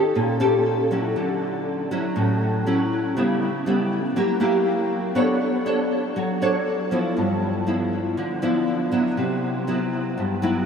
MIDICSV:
0, 0, Header, 1, 2, 480
1, 0, Start_track
1, 0, Key_signature, 2, "major"
1, 0, Tempo, 500835
1, 1104, Time_signature, 4, 2, 24, 8
1, 4944, Key_signature, 2, "minor"
1, 10214, End_track
2, 0, Start_track
2, 0, Title_t, "Nylon-string guitar"
2, 0, Program_c, 0, 24
2, 0, Note_on_c, 0, 51, 67
2, 0, Note_on_c, 0, 61, 60
2, 0, Note_on_c, 0, 67, 59
2, 0, Note_on_c, 0, 69, 63
2, 118, Note_off_c, 0, 51, 0
2, 147, Note_on_c, 0, 46, 71
2, 346, Note_off_c, 0, 61, 0
2, 348, Note_off_c, 0, 67, 0
2, 349, Note_off_c, 0, 69, 0
2, 382, Note_on_c, 0, 61, 70
2, 389, Note_on_c, 0, 67, 67
2, 390, Note_on_c, 0, 69, 70
2, 826, Note_off_c, 0, 61, 0
2, 827, Note_off_c, 0, 67, 0
2, 829, Note_off_c, 0, 69, 0
2, 870, Note_on_c, 0, 54, 58
2, 877, Note_on_c, 0, 61, 59
2, 882, Note_on_c, 0, 64, 63
2, 1082, Note_off_c, 0, 46, 0
2, 1110, Note_on_c, 0, 50, 64
2, 1789, Note_off_c, 0, 54, 0
2, 1793, Note_off_c, 0, 61, 0
2, 1794, Note_off_c, 0, 64, 0
2, 1832, Note_on_c, 0, 54, 62
2, 1836, Note_on_c, 0, 61, 64
2, 1841, Note_on_c, 0, 64, 61
2, 2043, Note_off_c, 0, 50, 0
2, 2067, Note_on_c, 0, 45, 73
2, 2510, Note_off_c, 0, 54, 0
2, 2512, Note_off_c, 0, 61, 0
2, 2514, Note_off_c, 0, 64, 0
2, 2553, Note_on_c, 0, 54, 58
2, 2556, Note_on_c, 0, 61, 61
2, 2559, Note_on_c, 0, 64, 67
2, 3002, Note_off_c, 0, 45, 0
2, 3010, Note_off_c, 0, 54, 0
2, 3011, Note_off_c, 0, 61, 0
2, 3013, Note_off_c, 0, 64, 0
2, 3033, Note_on_c, 0, 49, 71
2, 3036, Note_on_c, 0, 55, 55
2, 3039, Note_on_c, 0, 59, 56
2, 3044, Note_on_c, 0, 64, 59
2, 3338, Note_off_c, 0, 55, 0
2, 3342, Note_off_c, 0, 59, 0
2, 3342, Note_off_c, 0, 64, 0
2, 3510, Note_on_c, 0, 55, 58
2, 3517, Note_on_c, 0, 59, 57
2, 3522, Note_on_c, 0, 64, 62
2, 3830, Note_off_c, 0, 55, 0
2, 3833, Note_off_c, 0, 59, 0
2, 3836, Note_off_c, 0, 64, 0
2, 3965, Note_off_c, 0, 49, 0
2, 3986, Note_on_c, 0, 54, 78
2, 3991, Note_on_c, 0, 58, 58
2, 3993, Note_on_c, 0, 64, 64
2, 3999, Note_on_c, 0, 67, 63
2, 4189, Note_off_c, 0, 58, 0
2, 4191, Note_off_c, 0, 64, 0
2, 4192, Note_off_c, 0, 67, 0
2, 4216, Note_on_c, 0, 58, 64
2, 4221, Note_on_c, 0, 64, 65
2, 4226, Note_on_c, 0, 67, 70
2, 4902, Note_off_c, 0, 58, 0
2, 4904, Note_off_c, 0, 64, 0
2, 4907, Note_off_c, 0, 67, 0
2, 4922, Note_off_c, 0, 54, 0
2, 4935, Note_on_c, 0, 59, 66
2, 4937, Note_on_c, 0, 62, 57
2, 4939, Note_on_c, 0, 69, 50
2, 4946, Note_on_c, 0, 73, 62
2, 5249, Note_off_c, 0, 62, 0
2, 5251, Note_off_c, 0, 69, 0
2, 5254, Note_off_c, 0, 73, 0
2, 5422, Note_on_c, 0, 62, 52
2, 5425, Note_on_c, 0, 69, 58
2, 5429, Note_on_c, 0, 73, 58
2, 5876, Note_off_c, 0, 59, 0
2, 5904, Note_on_c, 0, 54, 73
2, 6105, Note_off_c, 0, 62, 0
2, 6105, Note_off_c, 0, 69, 0
2, 6108, Note_off_c, 0, 73, 0
2, 6148, Note_on_c, 0, 62, 65
2, 6152, Note_on_c, 0, 69, 61
2, 6156, Note_on_c, 0, 73, 71
2, 6588, Note_off_c, 0, 62, 0
2, 6590, Note_off_c, 0, 69, 0
2, 6592, Note_off_c, 0, 73, 0
2, 6624, Note_on_c, 0, 53, 61
2, 6631, Note_on_c, 0, 59, 64
2, 6635, Note_on_c, 0, 64, 63
2, 6840, Note_off_c, 0, 54, 0
2, 6868, Note_on_c, 0, 43, 68
2, 7306, Note_off_c, 0, 53, 0
2, 7309, Note_off_c, 0, 59, 0
2, 7312, Note_off_c, 0, 64, 0
2, 7347, Note_on_c, 0, 53, 55
2, 7353, Note_on_c, 0, 59, 53
2, 7358, Note_on_c, 0, 64, 62
2, 7803, Note_off_c, 0, 43, 0
2, 7833, Note_on_c, 0, 50, 75
2, 8028, Note_off_c, 0, 53, 0
2, 8029, Note_off_c, 0, 59, 0
2, 8033, Note_off_c, 0, 64, 0
2, 8070, Note_on_c, 0, 53, 67
2, 8075, Note_on_c, 0, 64, 69
2, 8077, Note_on_c, 0, 59, 67
2, 8510, Note_off_c, 0, 53, 0
2, 8510, Note_off_c, 0, 59, 0
2, 8512, Note_off_c, 0, 64, 0
2, 8545, Note_on_c, 0, 54, 66
2, 8552, Note_on_c, 0, 59, 55
2, 8553, Note_on_c, 0, 64, 67
2, 8765, Note_off_c, 0, 50, 0
2, 8790, Note_on_c, 0, 48, 68
2, 9227, Note_off_c, 0, 54, 0
2, 9228, Note_off_c, 0, 59, 0
2, 9230, Note_off_c, 0, 64, 0
2, 9271, Note_on_c, 0, 54, 57
2, 9276, Note_on_c, 0, 59, 58
2, 9278, Note_on_c, 0, 64, 62
2, 9723, Note_off_c, 0, 48, 0
2, 9752, Note_on_c, 0, 43, 73
2, 9950, Note_off_c, 0, 54, 0
2, 9951, Note_off_c, 0, 59, 0
2, 9953, Note_off_c, 0, 64, 0
2, 9987, Note_on_c, 0, 54, 66
2, 9995, Note_on_c, 0, 59, 60
2, 9999, Note_on_c, 0, 64, 72
2, 10214, Note_off_c, 0, 43, 0
2, 10214, Note_off_c, 0, 54, 0
2, 10214, Note_off_c, 0, 59, 0
2, 10214, Note_off_c, 0, 64, 0
2, 10214, End_track
0, 0, End_of_file